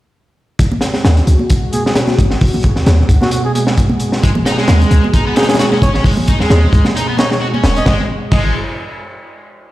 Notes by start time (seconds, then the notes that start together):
0.59 G#1 B2 G#3 F#4, kick, closed hi-hat
0.72 high conga, low conga
0.81 snare, closed hi-hat
0.94 snare
1.05 D#2, snare, closed hi-hat, high conga
1.17 closed hi-hat
1.27 C#2, closed hi-hat
1.39 high conga
1.50 kick, closed hi-hat
1.73 G#4, closed hi-hat, high conga
1.85 G#4, snare
1.95 snare, closed hi-hat
2.08 snare, high conga
2.18 G#1, kick, closed hi-hat
2.31 snare
2.41 G#1, kick, open hi-hat
2.54 high conga, low conga
2.63 kick, closed hi-hat
2.76 D#2, snare
2.86 D#2, snare, closed hi-hat, high conga
3.09 C#2, kick, closed hi-hat
3.21 F#4, snare, high conga
3.31 F#4, closed hi-hat
3.44 G#4
3.54 G#4, closed hi-hat, high conga
3.67 snare
3.77 kick, closed hi-hat
3.89 high conga
4.00 closed hi-hat
4.12 snare
4.23 G#1 G#3 G#4, kick, closed hi-hat
4.35 high conga, low conga
4.46 D#4, snare, closed hi-hat
4.58 G#3, snare
4.68 D#2, snare, closed hi-hat, high conga
4.81 closed hi-hat
4.91 C#2, closed hi-hat
5.04 high conga
5.14 D#4, kick, closed hi-hat
5.26 B3
5.36 D#4 G#4, snare, closed hi-hat, high conga
5.43 snare, closed hi-hat
5.49 G#4, snare, closed hi-hat
5.54 snare, closed hi-hat
5.59 F#4, snare, closed hi-hat
5.72 C#4, snare, high conga
5.82 G#1 C#5, kick, closed hi-hat
5.94 C#5, snare
6.04 G#1 G#3, kick, open hi-hat
6.17 high conga, low conga
6.27 D#4, kick, closed hi-hat
6.40 D#2 G#3, snare
6.50 D#2, snare, closed hi-hat, high conga
6.73 C#2, kick, closed hi-hat
6.85 snare, high conga
6.96 D#4, closed hi-hat
7.09 B3
7.17 D#4 C#5, snare, closed hi-hat, high conga
7.31 C#5, snare
7.41 F#4
7.54 C#4, high conga
7.64 D#1, snare, closed hi-hat
7.76 D#5, closed hi-hat
7.86 G#1 G#3 D#5, kick, snare
8.31 G#1 G#3 D#5, kick, crash